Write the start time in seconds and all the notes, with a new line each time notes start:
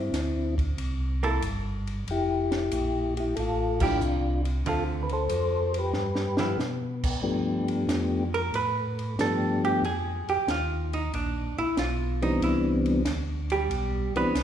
Already playing: G2 C4 E4
0.12 D2, snare, hi-hat pedal, ride
0.58 kick, ride
0.77 C2, ride
1.23 A#3 E4 A4, ride
1.41 G1, hi-hat pedal, ride
1.87 ride
2.07 F1 G4, ride
2.11 E4
2.52 snare, ride
2.71 A#1, hi-hat pedal, ride
3.17 E4 G4, ride
3.36 A1 F4 A4, ride
3.80 F3 A3 D4 E4 F4 G4, kick, crash
4.01 C2, hi-hat pedal
4.45 ride
4.65 D2 D3 A3 C4 F4, ride
4.69 F4 A4
5.03 B4
5.09 A4 C5, ride
5.29 F2, hi-hat pedal, ride
5.74 ride
5.79 G4 B4
5.93 G2, snare
6.15 snare
6.37 F3 B3 E4, snare
6.58 B2, snare, hi-hat pedal
7.04 kick, crash
7.22 G2 F3 A3 B3 D4 G4
7.68 ride
7.87 F2, snare, hi-hat pedal, ride
8.34 A#4, ride
8.53 A2 B4, ride
8.99 ride
9.18 G2 F3 A3 B3 D4 G4 A4, snare, hi-hat pedal, ride
9.64 G4, ride
9.82 F2 G#4, ride
10.28 F2 G4, ride
10.47 D#2 F4, snare, hi-hat pedal, ride
10.93 D#4, ride
11.13 A#1 D4, ride
11.57 A#1 E4, ride
11.77 B1 F4, snare, hi-hat pedal, ride
12.22 E3 G3 B3 C4 D4 D#4, ride
12.40 C2 E4, ride
12.86 ride
13.05 D2, snare, hi-hat pedal, ride
13.50 G3 G4, ride
13.70 B1, ride
14.15 B1 E3 G3 B3 C4 D4 B4, ride
14.34 C2, snare, hi-hat pedal, ride